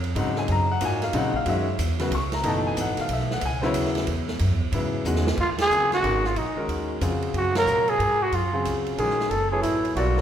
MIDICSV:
0, 0, Header, 1, 6, 480
1, 0, Start_track
1, 0, Tempo, 326619
1, 714, Time_signature, 3, 2, 24, 8
1, 15011, End_track
2, 0, Start_track
2, 0, Title_t, "Trumpet"
2, 0, Program_c, 0, 56
2, 7941, Note_on_c, 0, 65, 92
2, 8070, Note_off_c, 0, 65, 0
2, 8253, Note_on_c, 0, 68, 107
2, 8679, Note_off_c, 0, 68, 0
2, 8727, Note_on_c, 0, 66, 98
2, 9203, Note_on_c, 0, 65, 85
2, 9225, Note_off_c, 0, 66, 0
2, 9368, Note_on_c, 0, 63, 73
2, 9390, Note_off_c, 0, 65, 0
2, 9837, Note_off_c, 0, 63, 0
2, 10835, Note_on_c, 0, 66, 91
2, 11097, Note_off_c, 0, 66, 0
2, 11130, Note_on_c, 0, 70, 103
2, 11599, Note_on_c, 0, 68, 109
2, 11621, Note_off_c, 0, 70, 0
2, 12087, Note_on_c, 0, 66, 94
2, 12109, Note_off_c, 0, 68, 0
2, 12261, Note_on_c, 0, 65, 78
2, 12284, Note_off_c, 0, 66, 0
2, 12726, Note_off_c, 0, 65, 0
2, 13209, Note_on_c, 0, 68, 89
2, 13663, Note_on_c, 0, 69, 94
2, 13685, Note_off_c, 0, 68, 0
2, 13968, Note_off_c, 0, 69, 0
2, 13977, Note_on_c, 0, 68, 89
2, 14130, Note_off_c, 0, 68, 0
2, 14139, Note_on_c, 0, 64, 86
2, 14592, Note_off_c, 0, 64, 0
2, 14631, Note_on_c, 0, 66, 82
2, 15011, Note_off_c, 0, 66, 0
2, 15011, End_track
3, 0, Start_track
3, 0, Title_t, "Grand piano"
3, 0, Program_c, 1, 0
3, 228, Note_on_c, 1, 49, 76
3, 230, Note_on_c, 1, 54, 69
3, 236, Note_on_c, 1, 63, 78
3, 239, Note_on_c, 1, 60, 64
3, 279, Note_on_c, 1, 78, 88
3, 554, Note_off_c, 1, 78, 0
3, 564, Note_on_c, 1, 80, 96
3, 721, Note_off_c, 1, 80, 0
3, 762, Note_on_c, 1, 82, 108
3, 955, Note_off_c, 1, 49, 0
3, 956, Note_off_c, 1, 54, 0
3, 959, Note_off_c, 1, 63, 0
3, 960, Note_off_c, 1, 60, 0
3, 1035, Note_off_c, 1, 82, 0
3, 1052, Note_on_c, 1, 78, 100
3, 1192, Note_on_c, 1, 65, 60
3, 1196, Note_on_c, 1, 58, 60
3, 1204, Note_on_c, 1, 63, 59
3, 1204, Note_on_c, 1, 66, 73
3, 1205, Note_off_c, 1, 78, 0
3, 1252, Note_on_c, 1, 80, 109
3, 1519, Note_off_c, 1, 80, 0
3, 1527, Note_on_c, 1, 77, 93
3, 1654, Note_off_c, 1, 65, 0
3, 1657, Note_off_c, 1, 58, 0
3, 1661, Note_off_c, 1, 63, 0
3, 1661, Note_off_c, 1, 66, 0
3, 1674, Note_on_c, 1, 49, 85
3, 1677, Note_on_c, 1, 54, 75
3, 1682, Note_off_c, 1, 77, 0
3, 1682, Note_on_c, 1, 60, 72
3, 1685, Note_on_c, 1, 63, 94
3, 1721, Note_on_c, 1, 78, 101
3, 1948, Note_off_c, 1, 49, 0
3, 1950, Note_off_c, 1, 54, 0
3, 1952, Note_off_c, 1, 60, 0
3, 1953, Note_off_c, 1, 63, 0
3, 1994, Note_off_c, 1, 78, 0
3, 2000, Note_on_c, 1, 77, 99
3, 2151, Note_on_c, 1, 56, 65
3, 2153, Note_on_c, 1, 51, 69
3, 2158, Note_off_c, 1, 77, 0
3, 2160, Note_on_c, 1, 66, 77
3, 2162, Note_on_c, 1, 61, 68
3, 2195, Note_on_c, 1, 76, 86
3, 2426, Note_off_c, 1, 56, 0
3, 2427, Note_off_c, 1, 51, 0
3, 2431, Note_off_c, 1, 66, 0
3, 2432, Note_off_c, 1, 61, 0
3, 2621, Note_off_c, 1, 76, 0
3, 2934, Note_on_c, 1, 49, 79
3, 2939, Note_on_c, 1, 54, 68
3, 2940, Note_on_c, 1, 59, 70
3, 2946, Note_on_c, 1, 66, 81
3, 3092, Note_off_c, 1, 49, 0
3, 3094, Note_off_c, 1, 54, 0
3, 3095, Note_off_c, 1, 59, 0
3, 3098, Note_off_c, 1, 66, 0
3, 3157, Note_on_c, 1, 85, 85
3, 3430, Note_off_c, 1, 85, 0
3, 3438, Note_on_c, 1, 82, 89
3, 3586, Note_on_c, 1, 47, 83
3, 3589, Note_on_c, 1, 52, 79
3, 3593, Note_on_c, 1, 63, 88
3, 3594, Note_on_c, 1, 57, 76
3, 3596, Note_off_c, 1, 82, 0
3, 3637, Note_on_c, 1, 81, 83
3, 3910, Note_off_c, 1, 81, 0
3, 3921, Note_on_c, 1, 80, 89
3, 4077, Note_off_c, 1, 80, 0
3, 4127, Note_on_c, 1, 78, 95
3, 4395, Note_off_c, 1, 78, 0
3, 4420, Note_on_c, 1, 77, 87
3, 4567, Note_off_c, 1, 77, 0
3, 4599, Note_on_c, 1, 76, 72
3, 4870, Note_off_c, 1, 76, 0
3, 4900, Note_on_c, 1, 78, 88
3, 4921, Note_off_c, 1, 47, 0
3, 4922, Note_off_c, 1, 52, 0
3, 4925, Note_off_c, 1, 57, 0
3, 4925, Note_off_c, 1, 63, 0
3, 5046, Note_off_c, 1, 78, 0
3, 5078, Note_on_c, 1, 80, 103
3, 5312, Note_on_c, 1, 72, 70
3, 5328, Note_on_c, 1, 49, 82
3, 5333, Note_off_c, 1, 72, 0
3, 5336, Note_on_c, 1, 54, 79
3, 5336, Note_on_c, 1, 59, 84
3, 5343, Note_on_c, 1, 64, 98
3, 5349, Note_off_c, 1, 80, 0
3, 5375, Note_on_c, 1, 73, 95
3, 5467, Note_off_c, 1, 73, 0
3, 5949, Note_off_c, 1, 49, 0
3, 5953, Note_off_c, 1, 54, 0
3, 5953, Note_off_c, 1, 59, 0
3, 5957, Note_off_c, 1, 64, 0
3, 6963, Note_on_c, 1, 49, 66
3, 6965, Note_on_c, 1, 54, 62
3, 6967, Note_on_c, 1, 59, 66
3, 6973, Note_on_c, 1, 64, 72
3, 7416, Note_off_c, 1, 49, 0
3, 7418, Note_off_c, 1, 54, 0
3, 7418, Note_off_c, 1, 59, 0
3, 7421, Note_off_c, 1, 64, 0
3, 7434, Note_on_c, 1, 51, 70
3, 7441, Note_on_c, 1, 61, 64
3, 7441, Note_on_c, 1, 66, 80
3, 7443, Note_on_c, 1, 56, 62
3, 7704, Note_off_c, 1, 51, 0
3, 7708, Note_off_c, 1, 61, 0
3, 7708, Note_off_c, 1, 66, 0
3, 7709, Note_off_c, 1, 56, 0
3, 8399, Note_on_c, 1, 49, 50
3, 8399, Note_on_c, 1, 60, 43
3, 8402, Note_on_c, 1, 54, 42
3, 8406, Note_on_c, 1, 65, 43
3, 8408, Note_on_c, 1, 68, 56
3, 8854, Note_off_c, 1, 49, 0
3, 8855, Note_off_c, 1, 60, 0
3, 8856, Note_off_c, 1, 54, 0
3, 8858, Note_off_c, 1, 65, 0
3, 8859, Note_off_c, 1, 68, 0
3, 8870, Note_on_c, 1, 51, 57
3, 8870, Note_on_c, 1, 61, 55
3, 8873, Note_on_c, 1, 56, 47
3, 8878, Note_on_c, 1, 66, 53
3, 8880, Note_on_c, 1, 70, 65
3, 9143, Note_off_c, 1, 51, 0
3, 9143, Note_off_c, 1, 61, 0
3, 9144, Note_off_c, 1, 56, 0
3, 9147, Note_off_c, 1, 66, 0
3, 9148, Note_off_c, 1, 70, 0
3, 9654, Note_on_c, 1, 51, 64
3, 9655, Note_on_c, 1, 56, 54
3, 9657, Note_on_c, 1, 61, 59
3, 9660, Note_on_c, 1, 70, 74
3, 9665, Note_on_c, 1, 66, 59
3, 10273, Note_off_c, 1, 51, 0
3, 10273, Note_off_c, 1, 56, 0
3, 10274, Note_off_c, 1, 61, 0
3, 10276, Note_off_c, 1, 70, 0
3, 10278, Note_off_c, 1, 66, 0
3, 10308, Note_on_c, 1, 66, 54
3, 10309, Note_on_c, 1, 49, 66
3, 10312, Note_on_c, 1, 60, 59
3, 10317, Note_on_c, 1, 65, 60
3, 10320, Note_on_c, 1, 68, 65
3, 11032, Note_off_c, 1, 66, 0
3, 11033, Note_off_c, 1, 49, 0
3, 11034, Note_off_c, 1, 60, 0
3, 11037, Note_off_c, 1, 65, 0
3, 11038, Note_off_c, 1, 68, 0
3, 11100, Note_on_c, 1, 48, 64
3, 11103, Note_on_c, 1, 65, 64
3, 11104, Note_on_c, 1, 54, 68
3, 11111, Note_on_c, 1, 70, 62
3, 11111, Note_on_c, 1, 73, 80
3, 11716, Note_off_c, 1, 48, 0
3, 11718, Note_off_c, 1, 65, 0
3, 11719, Note_off_c, 1, 54, 0
3, 11722, Note_off_c, 1, 70, 0
3, 11722, Note_off_c, 1, 73, 0
3, 12537, Note_on_c, 1, 49, 66
3, 12540, Note_on_c, 1, 54, 62
3, 12547, Note_on_c, 1, 65, 61
3, 12548, Note_on_c, 1, 60, 59
3, 12548, Note_on_c, 1, 68, 71
3, 13156, Note_off_c, 1, 49, 0
3, 13157, Note_off_c, 1, 54, 0
3, 13161, Note_off_c, 1, 65, 0
3, 13162, Note_off_c, 1, 60, 0
3, 13162, Note_off_c, 1, 68, 0
3, 13200, Note_on_c, 1, 61, 55
3, 13201, Note_on_c, 1, 51, 56
3, 13202, Note_on_c, 1, 56, 56
3, 13204, Note_on_c, 1, 70, 67
3, 13206, Note_on_c, 1, 66, 52
3, 13676, Note_off_c, 1, 51, 0
3, 13676, Note_off_c, 1, 61, 0
3, 13677, Note_off_c, 1, 56, 0
3, 13678, Note_off_c, 1, 66, 0
3, 13678, Note_off_c, 1, 70, 0
3, 13990, Note_on_c, 1, 59, 61
3, 13991, Note_on_c, 1, 54, 61
3, 13995, Note_on_c, 1, 64, 60
3, 13995, Note_on_c, 1, 73, 74
3, 13998, Note_on_c, 1, 69, 61
3, 14604, Note_off_c, 1, 54, 0
3, 14604, Note_off_c, 1, 59, 0
3, 14606, Note_off_c, 1, 64, 0
3, 14606, Note_off_c, 1, 73, 0
3, 14608, Note_off_c, 1, 69, 0
3, 14646, Note_on_c, 1, 55, 62
3, 14647, Note_on_c, 1, 60, 58
3, 14653, Note_on_c, 1, 65, 55
3, 14653, Note_on_c, 1, 70, 57
3, 14655, Note_on_c, 1, 74, 69
3, 14915, Note_off_c, 1, 55, 0
3, 14915, Note_off_c, 1, 60, 0
3, 14918, Note_off_c, 1, 65, 0
3, 14918, Note_off_c, 1, 70, 0
3, 14919, Note_off_c, 1, 74, 0
3, 14942, Note_on_c, 1, 59, 59
3, 14945, Note_on_c, 1, 64, 57
3, 14948, Note_on_c, 1, 54, 64
3, 14948, Note_on_c, 1, 69, 55
3, 14952, Note_on_c, 1, 73, 70
3, 15011, Note_off_c, 1, 54, 0
3, 15011, Note_off_c, 1, 59, 0
3, 15011, Note_off_c, 1, 64, 0
3, 15011, Note_off_c, 1, 69, 0
3, 15011, Note_off_c, 1, 73, 0
3, 15011, End_track
4, 0, Start_track
4, 0, Title_t, "Upright bass"
4, 0, Program_c, 2, 32
4, 0, Note_on_c, 2, 41, 91
4, 215, Note_off_c, 2, 41, 0
4, 222, Note_on_c, 2, 44, 97
4, 693, Note_off_c, 2, 44, 0
4, 710, Note_on_c, 2, 42, 93
4, 1177, Note_off_c, 2, 42, 0
4, 1188, Note_on_c, 2, 44, 91
4, 1648, Note_off_c, 2, 44, 0
4, 1657, Note_on_c, 2, 46, 95
4, 2129, Note_off_c, 2, 46, 0
4, 2139, Note_on_c, 2, 42, 96
4, 2610, Note_off_c, 2, 42, 0
4, 2620, Note_on_c, 2, 40, 86
4, 3090, Note_off_c, 2, 40, 0
4, 3097, Note_on_c, 2, 37, 95
4, 3568, Note_off_c, 2, 37, 0
4, 3577, Note_on_c, 2, 30, 93
4, 4048, Note_off_c, 2, 30, 0
4, 4059, Note_on_c, 2, 32, 93
4, 4347, Note_off_c, 2, 32, 0
4, 4529, Note_on_c, 2, 35, 94
4, 5003, Note_off_c, 2, 35, 0
4, 5022, Note_on_c, 2, 37, 91
4, 5490, Note_off_c, 2, 37, 0
4, 5500, Note_on_c, 2, 39, 86
4, 5968, Note_off_c, 2, 39, 0
4, 5984, Note_on_c, 2, 40, 102
4, 6450, Note_off_c, 2, 40, 0
4, 6467, Note_on_c, 2, 42, 101
4, 6624, Note_off_c, 2, 42, 0
4, 6624, Note_on_c, 2, 40, 61
4, 6764, Note_off_c, 2, 40, 0
4, 6773, Note_on_c, 2, 37, 76
4, 6927, Note_off_c, 2, 37, 0
4, 6934, Note_on_c, 2, 44, 92
4, 7405, Note_off_c, 2, 44, 0
4, 7417, Note_on_c, 2, 40, 101
4, 7886, Note_off_c, 2, 40, 0
4, 7899, Note_on_c, 2, 39, 78
4, 8360, Note_off_c, 2, 39, 0
4, 8369, Note_on_c, 2, 37, 76
4, 8842, Note_off_c, 2, 37, 0
4, 8859, Note_on_c, 2, 32, 84
4, 9328, Note_off_c, 2, 32, 0
4, 9336, Note_on_c, 2, 34, 81
4, 9625, Note_off_c, 2, 34, 0
4, 9815, Note_on_c, 2, 39, 75
4, 10286, Note_off_c, 2, 39, 0
4, 10299, Note_on_c, 2, 41, 84
4, 10769, Note_off_c, 2, 41, 0
4, 10781, Note_on_c, 2, 42, 84
4, 11250, Note_off_c, 2, 42, 0
4, 11262, Note_on_c, 2, 46, 79
4, 11731, Note_off_c, 2, 46, 0
4, 11744, Note_on_c, 2, 44, 87
4, 12212, Note_off_c, 2, 44, 0
4, 12224, Note_on_c, 2, 42, 85
4, 12692, Note_off_c, 2, 42, 0
4, 12705, Note_on_c, 2, 37, 82
4, 13173, Note_off_c, 2, 37, 0
4, 13182, Note_on_c, 2, 34, 79
4, 13652, Note_off_c, 2, 34, 0
4, 13664, Note_on_c, 2, 30, 82
4, 14133, Note_off_c, 2, 30, 0
4, 14147, Note_on_c, 2, 33, 78
4, 14615, Note_off_c, 2, 33, 0
4, 14628, Note_on_c, 2, 35, 83
4, 15011, Note_off_c, 2, 35, 0
4, 15011, End_track
5, 0, Start_track
5, 0, Title_t, "Muted upright bass strokes"
5, 4366, Note_on_c, 9, 29, 45
5, 4513, Note_off_c, 9, 29, 0
5, 9648, Note_on_c, 9, 29, 37
5, 9795, Note_off_c, 9, 29, 0
5, 15011, End_track
6, 0, Start_track
6, 0, Title_t, "Drums"
6, 55, Note_on_c, 9, 51, 52
6, 202, Note_off_c, 9, 51, 0
6, 234, Note_on_c, 9, 51, 73
6, 381, Note_off_c, 9, 51, 0
6, 523, Note_on_c, 9, 38, 46
6, 670, Note_off_c, 9, 38, 0
6, 704, Note_on_c, 9, 51, 69
6, 851, Note_off_c, 9, 51, 0
6, 1185, Note_on_c, 9, 44, 66
6, 1185, Note_on_c, 9, 51, 80
6, 1332, Note_off_c, 9, 44, 0
6, 1332, Note_off_c, 9, 51, 0
6, 1492, Note_on_c, 9, 38, 45
6, 1495, Note_on_c, 9, 51, 52
6, 1639, Note_off_c, 9, 38, 0
6, 1642, Note_off_c, 9, 51, 0
6, 1662, Note_on_c, 9, 51, 82
6, 1809, Note_off_c, 9, 51, 0
6, 1966, Note_on_c, 9, 36, 52
6, 2113, Note_off_c, 9, 36, 0
6, 2142, Note_on_c, 9, 51, 74
6, 2288, Note_off_c, 9, 51, 0
6, 2627, Note_on_c, 9, 44, 68
6, 2627, Note_on_c, 9, 51, 77
6, 2774, Note_off_c, 9, 44, 0
6, 2774, Note_off_c, 9, 51, 0
6, 2929, Note_on_c, 9, 38, 45
6, 2932, Note_on_c, 9, 51, 56
6, 3076, Note_off_c, 9, 38, 0
6, 3079, Note_off_c, 9, 51, 0
6, 3109, Note_on_c, 9, 51, 73
6, 3256, Note_off_c, 9, 51, 0
6, 3405, Note_on_c, 9, 38, 63
6, 3408, Note_on_c, 9, 51, 55
6, 3552, Note_off_c, 9, 38, 0
6, 3555, Note_off_c, 9, 51, 0
6, 3579, Note_on_c, 9, 51, 77
6, 3726, Note_off_c, 9, 51, 0
6, 4068, Note_on_c, 9, 44, 72
6, 4068, Note_on_c, 9, 51, 72
6, 4215, Note_off_c, 9, 44, 0
6, 4215, Note_off_c, 9, 51, 0
6, 4363, Note_on_c, 9, 38, 41
6, 4366, Note_on_c, 9, 51, 58
6, 4510, Note_off_c, 9, 38, 0
6, 4513, Note_off_c, 9, 51, 0
6, 4537, Note_on_c, 9, 51, 73
6, 4684, Note_off_c, 9, 51, 0
6, 4694, Note_on_c, 9, 38, 32
6, 4841, Note_off_c, 9, 38, 0
6, 4856, Note_on_c, 9, 38, 56
6, 5003, Note_off_c, 9, 38, 0
6, 5015, Note_on_c, 9, 51, 76
6, 5162, Note_off_c, 9, 51, 0
6, 5321, Note_on_c, 9, 38, 45
6, 5468, Note_off_c, 9, 38, 0
6, 5497, Note_on_c, 9, 44, 71
6, 5497, Note_on_c, 9, 51, 82
6, 5644, Note_off_c, 9, 44, 0
6, 5644, Note_off_c, 9, 51, 0
6, 5656, Note_on_c, 9, 38, 32
6, 5803, Note_off_c, 9, 38, 0
6, 5804, Note_on_c, 9, 51, 52
6, 5818, Note_on_c, 9, 38, 51
6, 5951, Note_off_c, 9, 51, 0
6, 5965, Note_off_c, 9, 38, 0
6, 5979, Note_on_c, 9, 51, 66
6, 6126, Note_off_c, 9, 51, 0
6, 6286, Note_on_c, 9, 38, 60
6, 6433, Note_off_c, 9, 38, 0
6, 6457, Note_on_c, 9, 51, 72
6, 6604, Note_off_c, 9, 51, 0
6, 6943, Note_on_c, 9, 51, 71
6, 7090, Note_off_c, 9, 51, 0
6, 7423, Note_on_c, 9, 44, 80
6, 7569, Note_off_c, 9, 44, 0
6, 7578, Note_on_c, 9, 38, 68
6, 7725, Note_off_c, 9, 38, 0
6, 7738, Note_on_c, 9, 38, 105
6, 7885, Note_off_c, 9, 38, 0
6, 7899, Note_on_c, 9, 49, 67
6, 7902, Note_on_c, 9, 36, 68
6, 8046, Note_off_c, 9, 49, 0
6, 8049, Note_off_c, 9, 36, 0
6, 8204, Note_on_c, 9, 38, 85
6, 8207, Note_on_c, 9, 51, 73
6, 8351, Note_off_c, 9, 38, 0
6, 8354, Note_off_c, 9, 51, 0
6, 8389, Note_on_c, 9, 44, 58
6, 8536, Note_off_c, 9, 44, 0
6, 8697, Note_on_c, 9, 38, 53
6, 8700, Note_on_c, 9, 51, 42
6, 8844, Note_off_c, 9, 38, 0
6, 8847, Note_off_c, 9, 51, 0
6, 8874, Note_on_c, 9, 51, 60
6, 9021, Note_off_c, 9, 51, 0
6, 9174, Note_on_c, 9, 38, 42
6, 9321, Note_off_c, 9, 38, 0
6, 9350, Note_on_c, 9, 51, 58
6, 9497, Note_off_c, 9, 51, 0
6, 9830, Note_on_c, 9, 51, 64
6, 9977, Note_off_c, 9, 51, 0
6, 10306, Note_on_c, 9, 44, 65
6, 10306, Note_on_c, 9, 51, 70
6, 10453, Note_off_c, 9, 44, 0
6, 10453, Note_off_c, 9, 51, 0
6, 10616, Note_on_c, 9, 51, 47
6, 10763, Note_off_c, 9, 51, 0
6, 10789, Note_on_c, 9, 51, 59
6, 10936, Note_off_c, 9, 51, 0
6, 11097, Note_on_c, 9, 38, 88
6, 11099, Note_on_c, 9, 51, 71
6, 11243, Note_off_c, 9, 38, 0
6, 11246, Note_off_c, 9, 51, 0
6, 11271, Note_on_c, 9, 44, 55
6, 11418, Note_off_c, 9, 44, 0
6, 11577, Note_on_c, 9, 51, 44
6, 11724, Note_off_c, 9, 51, 0
6, 11756, Note_on_c, 9, 51, 63
6, 11903, Note_off_c, 9, 51, 0
6, 12233, Note_on_c, 9, 51, 60
6, 12380, Note_off_c, 9, 51, 0
6, 12717, Note_on_c, 9, 44, 59
6, 12717, Note_on_c, 9, 51, 66
6, 12864, Note_off_c, 9, 44, 0
6, 12864, Note_off_c, 9, 51, 0
6, 13028, Note_on_c, 9, 51, 47
6, 13175, Note_off_c, 9, 51, 0
6, 13202, Note_on_c, 9, 51, 67
6, 13349, Note_off_c, 9, 51, 0
6, 13369, Note_on_c, 9, 38, 30
6, 13515, Note_off_c, 9, 38, 0
6, 13519, Note_on_c, 9, 38, 43
6, 13666, Note_off_c, 9, 38, 0
6, 13680, Note_on_c, 9, 51, 53
6, 13827, Note_off_c, 9, 51, 0
6, 14156, Note_on_c, 9, 44, 54
6, 14156, Note_on_c, 9, 51, 67
6, 14303, Note_off_c, 9, 44, 0
6, 14303, Note_off_c, 9, 51, 0
6, 14472, Note_on_c, 9, 51, 48
6, 14619, Note_off_c, 9, 51, 0
6, 14645, Note_on_c, 9, 51, 62
6, 14792, Note_off_c, 9, 51, 0
6, 14944, Note_on_c, 9, 38, 40
6, 15011, Note_off_c, 9, 38, 0
6, 15011, End_track
0, 0, End_of_file